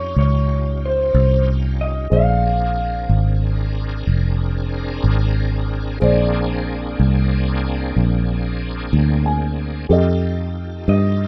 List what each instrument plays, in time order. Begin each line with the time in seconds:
Already playing: fingered electric bass F2, tonewheel organ C#4 D#4 F4 G4, upright piano C#4 G4 D#5, clean electric guitar C#5
0.16 fingered electric bass C#2, clean electric guitar C#5
0.86 clean electric guitar C5
1.14 fingered electric bass C2
1.81 clean electric guitar D#5
2.10 fingered electric bass A#1, tonewheel organ C#3 A3 D#4 C5, upright piano G#4 C5 D5, clean electric guitar F5
2.45 tonewheel organ C4 D4 G#4 A#4
3.09 fingered electric bass G#1
4.07 fingered electric bass F1
5.04 fingered electric bass G#1
6.00 fingered electric bass A#1, tonewheel organ A#3 C4 D4 G#4, upright piano G#4 C5 D5
7.00 fingered electric bass C2
7.96 fingered electric bass A#1
8.93 fingered electric bass D2
9.26 upright piano G#5
9.89 fingered electric bass F2, tonewheel organ D#4 F4 G4 A4, upright piano G4 A4 D#5
10.88 fingered electric bass G2, clean electric guitar D#5